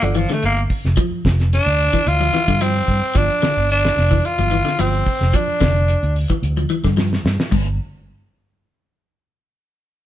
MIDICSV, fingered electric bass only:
0, 0, Header, 1, 3, 480
1, 0, Start_track
1, 0, Tempo, 545455
1, 855, Time_signature, 4, 2, 24, 8
1, 8846, End_track
2, 0, Start_track
2, 0, Title_t, "Fingered electric bass"
2, 0, Program_c, 0, 33
2, 23, Note_on_c, 0, 31, 86
2, 212, Note_off_c, 0, 31, 0
2, 382, Note_on_c, 0, 31, 83
2, 569, Note_off_c, 0, 31, 0
2, 744, Note_on_c, 0, 29, 84
2, 833, Note_off_c, 0, 29, 0
2, 1099, Note_on_c, 0, 29, 80
2, 1386, Note_off_c, 0, 29, 0
2, 1463, Note_on_c, 0, 38, 83
2, 1651, Note_off_c, 0, 38, 0
2, 1819, Note_on_c, 0, 38, 99
2, 2007, Note_off_c, 0, 38, 0
2, 2184, Note_on_c, 0, 43, 97
2, 2462, Note_off_c, 0, 43, 0
2, 2538, Note_on_c, 0, 43, 82
2, 2636, Note_off_c, 0, 43, 0
2, 2779, Note_on_c, 0, 31, 93
2, 2877, Note_off_c, 0, 31, 0
2, 3142, Note_on_c, 0, 31, 84
2, 3421, Note_off_c, 0, 31, 0
2, 3494, Note_on_c, 0, 29, 77
2, 3683, Note_off_c, 0, 29, 0
2, 3860, Note_on_c, 0, 31, 85
2, 4050, Note_off_c, 0, 31, 0
2, 4219, Note_on_c, 0, 31, 85
2, 4407, Note_off_c, 0, 31, 0
2, 4583, Note_on_c, 0, 29, 83
2, 4673, Note_off_c, 0, 29, 0
2, 4939, Note_on_c, 0, 29, 84
2, 5227, Note_off_c, 0, 29, 0
2, 5304, Note_on_c, 0, 38, 77
2, 5493, Note_off_c, 0, 38, 0
2, 5654, Note_on_c, 0, 38, 92
2, 5845, Note_off_c, 0, 38, 0
2, 6025, Note_on_c, 0, 43, 84
2, 6304, Note_off_c, 0, 43, 0
2, 6377, Note_on_c, 0, 43, 81
2, 6477, Note_off_c, 0, 43, 0
2, 6617, Note_on_c, 0, 31, 84
2, 6841, Note_off_c, 0, 31, 0
2, 8846, End_track
3, 0, Start_track
3, 0, Title_t, "Muted fingered electric bass strokes"
3, 979, Note_on_c, 9, 29, 35
3, 1067, Note_off_c, 9, 29, 0
3, 3019, Note_on_c, 9, 29, 35
3, 3107, Note_off_c, 9, 29, 0
3, 4824, Note_on_c, 9, 29, 37
3, 4912, Note_off_c, 9, 29, 0
3, 8846, End_track
0, 0, End_of_file